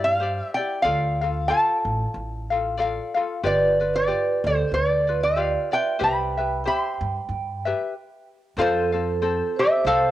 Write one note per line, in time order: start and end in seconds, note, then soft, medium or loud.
0.00 0.39 G2 medium
0.00 0.19 E4 soft
0.00 0.20 G4 soft
0.00 0.21 D5 medium
0.00 0.54 F5 medium
0.20 0.57 G4 soft
0.20 0.57 C5 medium
0.20 0.55 D5 medium
0.54 0.85 E4 soft
0.54 0.82 D5 medium
0.54 0.85 G5 medium
0.58 0.83 G4 soft
0.82 1.50 D2 medium
0.82 1.21 F4 medium
0.82 1.21 A4 medium
0.82 1.21 D5 medium
0.82 1.50 F5 medium
0.82 1.20 F5 medium
1.21 1.49 F4 soft
1.21 1.49 A4 soft
1.21 1.50 F5 soft
1.48 2.52 F4 medium
1.48 2.50 A4 medium
1.48 2.77 D5 medium
1.48 2.50 F5 medium
1.48 2.45 A5 medium
1.85 2.03 A1 medium
2.14 2.98 A1 medium
2.50 2.77 F4 soft
2.50 2.78 A4 medium
2.50 2.78 F5 soft
2.77 3.15 F4 medium
2.77 3.15 A4 medium
2.77 3.14 D5 medium
2.77 3.13 F5 medium
3.14 3.42 F4 medium
3.14 3.43 A4 soft
3.14 3.43 F5 medium
3.43 4.09 G1 medium
3.43 3.79 F4 medium
3.43 3.79 G4 medium
3.43 3.79 B4 medium
3.43 3.91 B4 medium
3.43 3.78 D5 medium
3.43 3.94 D5 medium
3.80 4.07 F4 soft
3.80 4.08 B4 soft
3.80 4.07 D5 soft
3.95 4.41 B4 medium
3.95 4.46 D5 medium
4.07 5.08 F4 medium
4.07 5.07 G4 medium
4.07 5.06 D5 medium
4.44 4.62 D2 medium
4.44 4.71 A4 medium
4.44 4.71 C5 medium
4.72 5.55 D2 medium
4.72 5.19 B4 medium
4.72 5.19 D5 medium
5.07 5.36 F4 soft
5.07 5.36 B4 soft
5.07 5.35 D5 soft
5.21 5.68 D5 medium
5.21 5.73 F5 medium
5.36 5.73 F4 medium
5.36 5.72 G4 soft
5.36 5.72 B4 medium
5.36 5.71 D5 medium
5.71 5.99 F4 soft
5.71 5.98 B4 soft
5.71 5.99 D5 medium
5.71 5.98 E5 medium
5.71 6.01 G5 medium
5.99 6.66 C2 medium
5.99 6.36 G4 medium
5.99 6.36 B4 medium
5.99 6.36 C5 medium
5.99 6.36 E5 medium
5.99 6.60 G5 medium
6.04 6.67 B5 medium
6.37 6.65 G4 soft
6.37 6.65 B4 soft
6.37 6.65 E5 soft
6.64 7.66 G4 medium
6.64 7.66 C5 medium
6.64 7.64 E5 medium
6.64 7.61 G5 medium
6.64 7.62 C6 medium
7.01 7.19 G2 medium
7.29 7.70 G2 medium
7.65 7.94 G4 soft
7.65 7.93 B4 medium
7.65 7.93 E5 medium
8.57 9.40 F2 medium
8.57 8.93 C4 medium
8.57 9.54 F4 soft
8.57 8.92 A4 medium
8.57 9.54 A4 medium
8.57 8.93 C5 medium
8.57 8.91 F5 medium
8.61 9.62 C5 medium
8.92 9.21 C4 soft
8.92 9.21 A4 soft
8.92 9.21 F5 soft
9.22 9.86 C4 medium
9.22 9.87 A4 medium
9.22 9.86 C5 medium
9.56 9.84 G4 medium
9.56 9.83 C5 medium
9.56 9.87 E5 medium
9.84 10.11 C2 medium
9.84 10.11 C4 medium
9.84 10.11 A4 medium
9.84 10.11 C5 medium
9.84 10.11 F5 medium